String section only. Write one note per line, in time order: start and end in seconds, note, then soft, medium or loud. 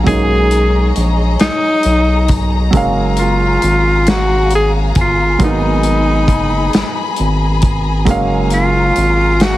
0.00 2.69 G#4 medium
0.00 8.03 A#5 medium
0.07 2.71 C#5 medium
0.07 2.71 D#5 medium
2.74 9.57 G#4 medium
2.74 5.38 F5 medium
2.74 9.57 G#5 medium
5.40 8.04 B5 medium
8.07 9.57 F5 medium
8.07 9.57 A#5 medium